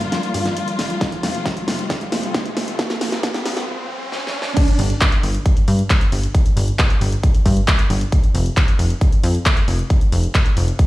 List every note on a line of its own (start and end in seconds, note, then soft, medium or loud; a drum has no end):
0.00 0.98 D3 medium
0.00 4.53 F3 medium
0.00 4.53 G3 medium
0.00 0.98 A#3 medium
0.00 4.53 F4 medium
0.00 closed hi-hat medium
0.00 riser medium
0.12 snare medium
0.12 closed hi-hat medium
0.23 closed hi-hat medium
0.34 0.49 G2 loud
0.34 open hi-hat loud
0.46 snare medium
0.46 closed hi-hat soft
0.57 closed hi-hat medium
0.68 closed hi-hat medium
0.79 0.94 G1 medium
0.79 snare medium
0.79 open hi-hat medium
0.90 closed hi-hat medium
1.01 4.53 C3 medium
1.01 4.53 A3 medium
1.01 kick loud
1.01 snare medium
1.01 closed hi-hat medium
1.12 closed hi-hat medium
1.23 1.38 F1 loud
1.23 snare medium
1.23 open hi-hat loud
1.35 closed hi-hat medium
1.46 kick loud
1.46 snare medium
1.46 closed hi-hat medium
1.57 closed hi-hat soft
1.68 1.83 F1 medium
1.68 snare medium
1.68 open hi-hat loud
1.79 closed hi-hat medium
1.90 kick loud
1.90 snare medium
1.90 closed hi-hat medium
2.01 closed hi-hat medium
2.12 2.27 F2 medium
2.12 snare medium
2.12 open hi-hat loud
2.23 closed hi-hat soft
2.34 kick loud
2.34 snare medium
2.34 closed hi-hat medium
2.46 closed hi-hat medium
2.57 2.72 F1 medium
2.57 snare medium
2.57 open hi-hat medium
2.68 closed hi-hat medium
2.79 kick loud
2.79 snare medium
2.79 closed hi-hat medium
2.90 snare medium
2.90 closed hi-hat medium
3.01 3.16 F1 loud
3.01 snare medium
3.01 open hi-hat loud
3.12 snare medium
3.12 closed hi-hat medium
3.23 kick loud
3.23 snare loud
3.23 closed hi-hat medium
3.34 snare medium
3.34 closed hi-hat soft
3.45 3.60 F1 loud
3.45 snare loud
3.45 open hi-hat loud
3.57 snare medium
3.57 closed hi-hat soft
4.12 snare medium
4.27 snare medium
4.42 snare loud
4.57 kick loud
4.57 closed hi-hat medium
4.57 crash loud
4.68 closed hi-hat medium
4.79 4.94 G1 loud
4.79 open hi-hat loud
4.90 closed hi-hat medium
5.01 kick loud
5.01 clap loud
5.01 closed hi-hat medium
5.12 closed hi-hat medium
5.23 5.38 G1 medium
5.23 open hi-hat medium
5.34 closed hi-hat medium
5.46 kick loud
5.46 closed hi-hat medium
5.57 closed hi-hat medium
5.68 5.83 G2 medium
5.68 open hi-hat loud
5.79 closed hi-hat medium
5.90 kick loud
5.90 clap loud
5.90 closed hi-hat medium
6.01 closed hi-hat medium
6.12 6.27 G1 medium
6.12 open hi-hat medium
6.23 closed hi-hat medium
6.35 kick loud
6.35 closed hi-hat medium
6.46 closed hi-hat medium
6.57 6.72 G1 loud
6.57 open hi-hat loud
6.68 closed hi-hat medium
6.79 kick loud
6.79 clap loud
6.79 closed hi-hat medium
6.90 closed hi-hat medium
7.01 7.16 G1 loud
7.01 open hi-hat loud
7.12 closed hi-hat medium
7.23 kick loud
7.23 closed hi-hat medium
7.35 closed hi-hat medium
7.46 7.61 G2 loud
7.46 kick medium
7.46 open hi-hat loud
7.57 closed hi-hat soft
7.68 kick loud
7.68 clap loud
7.68 closed hi-hat medium
7.79 closed hi-hat medium
7.90 8.05 G1 medium
7.90 open hi-hat medium
8.01 closed hi-hat medium
8.12 kick loud
8.12 closed hi-hat medium
8.24 closed hi-hat soft
8.35 8.49 F1 loud
8.35 open hi-hat loud
8.46 closed hi-hat medium
8.57 kick loud
8.57 clap loud
8.57 closed hi-hat medium
8.68 closed hi-hat medium
8.79 8.94 F1 medium
8.79 open hi-hat loud
8.90 closed hi-hat medium
9.01 kick loud
9.01 closed hi-hat medium
9.12 closed hi-hat medium
9.24 9.38 F2 medium
9.24 open hi-hat loud
9.35 closed hi-hat medium
9.46 kick loud
9.46 clap loud
9.46 closed hi-hat medium
9.57 closed hi-hat medium
9.68 9.83 F1 medium
9.68 open hi-hat medium
9.79 closed hi-hat medium
9.90 kick loud
9.90 closed hi-hat medium
10.01 closed hi-hat soft
10.12 10.27 F1 loud
10.12 open hi-hat loud
10.24 closed hi-hat medium
10.35 kick loud
10.35 clap loud
10.35 closed hi-hat medium
10.46 closed hi-hat soft
10.57 10.72 F1 loud
10.57 open hi-hat loud
10.68 closed hi-hat medium
10.79 kick loud
10.79 closed hi-hat medium